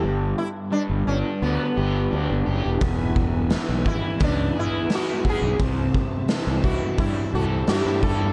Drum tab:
HH |--------|o-o-o-o-|o-o-o-o-|
SD |--------|--o---o-|--o---o-|
BD |--------|oo-oo--o|oo-oo--o|